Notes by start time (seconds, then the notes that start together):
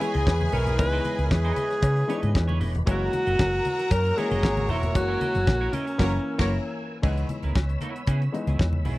Already playing: G#3 E4 G#4 B4 C#5 D#5 G#5 B5
0.00 E3 G#3 B3 E4 G#4 B4 C#5, closed hi-hat, muted conga
0.14 C#2 E4 B4 D#5, closed hi-hat, high conga
0.27 E2, kick, snare, cowbell, muted conga
0.41 muted clean electric guitar stroke, high conga
0.52 B1 E4 A#4 B4 C#5, open hi-hat, low conga
0.66 muted clean electric guitar stroke, closed hi-hat, low conga
0.78 C#2 E3 G#3 B3 D#4 B4, muted clean electric guitar stroke, kick, closed hi-hat, cowbell
0.92 E4 B4 C#5
1.04 E4 B4 D#5, closed hi-hat, high conga
1.19 C#2, muted clean electric guitar stroke, closed hi-hat
1.26 A#4
1.31 E2 G#4, muted clean electric guitar stroke, kick, snare, cowbell, high conga
1.44 E4 B4 C#5, closed hi-hat
1.56 E4 B4 D#5, closed hi-hat, high conga
1.71 muted clean electric guitar stroke, snare, closed hi-hat
1.82 C#3, muted clean electric guitar stroke, kick, closed hi-hat, cowbell
1.96 muted clean electric guitar stroke, closed hi-hat
2.08 E3 G#3 B3 D4 E4 B4 C#5, closed hi-hat
2.16 D#4
2.22 G#2 E4 B4 D#5, closed hi-hat, high conga
2.35 E2, muted clean electric guitar stroke, kick, snare, cowbell, muted conga
2.48 E4 B4 C#5, high conga
2.59 E1 E4 B4 D#5, open hi-hat, low conga
2.74 muted clean electric guitar stroke, closed hi-hat, low conga
2.86 F#1 E3 G#3 A#3 C#4 E4 F#4 A#4 C#5 F#5 A#5 E6, kick, closed hi-hat, cowbell, muted conga
3.13 muted clean electric guitar stroke, closed hi-hat, high conga
3.27 F#1 E4 A#4 D#5, closed hi-hat
3.39 F#1, muted clean electric guitar stroke, kick, snare, cowbell, muted conga, high conga
3.53 muted clean electric guitar stroke
3.65 closed hi-hat, high conga
3.79 muted clean electric guitar stroke, snare, closed hi-hat
3.91 F#2 A#3 F#4 A#4 C#5, muted clean electric guitar stroke, kick, closed hi-hat, cowbell
4.05 muted clean electric guitar stroke, closed hi-hat
4.16 E3 G#3 A#3 C#4 E4 G#4 A#4 C#5, closed hi-hat, muted conga
4.31 F#1 E4 A#4 D#5, closed hi-hat, high conga
4.43 G#1, kick, snare, cowbell
4.57 muted clean electric guitar stroke, high conga
4.68 E1 E4 A#4 C#5, open hi-hat, muted conga, low conga
4.83 muted clean electric guitar stroke, closed hi-hat, low conga
4.94 F#1 E3 G#3 A#3 C#4 F#4 G#5, muted clean electric guitar stroke, kick, closed hi-hat, cowbell, muted conga
5.08 E4 A#4 C#5
5.21 E4 A#4 D#5, closed hi-hat, muted conga, high conga
5.35 F#1, muted clean electric guitar stroke, closed hi-hat, high conga
5.47 A#1, muted clean electric guitar stroke, kick, snare, cowbell, muted conga, high conga
5.61 E4 A#4 C#5
5.73 C#4 E4 A#4 D#5, closed hi-hat, high conga
5.87 muted clean electric guitar stroke, closed hi-hat
5.98 F#1 E3 A#3 C#4 E4 F#4 A#4 C#5 A#5, kick, snare, crash
6.38 F#1 E3 A#3 C#4 E4 F#4 A#4 C#5 A#5, kick, snare, crash
7.02 C#2 E3 G#3 B3 D#4 E4 G#4 C#5 B5 E6, kick, crash, cowbell
7.18 closed hi-hat
7.29 muted clean electric guitar stroke, closed hi-hat, muted conga, high conga
7.43 C#2 B3 E4 A#4, closed hi-hat, high conga
7.55 C#2, kick, snare, cowbell, muted conga, high conga
7.69 muted clean electric guitar stroke, closed hi-hat
7.81 B3 E4 A#4, closed hi-hat, high conga
7.95 muted clean electric guitar stroke, closed hi-hat
8.07 C#3 B3 E4 G#4, kick, closed hi-hat, cowbell, muted conga
8.22 muted clean electric guitar stroke, closed hi-hat
8.32 E3 G#3 B3 D#4, muted clean electric guitar stroke, closed hi-hat
8.47 C#2 B3 E4 G#4, closed hi-hat, high conga
8.59 E2, kick, snare, cowbell, muted conga
8.73 muted clean electric guitar stroke, high conga
8.85 B1 B3 E4 G#4, open hi-hat, muted conga, low conga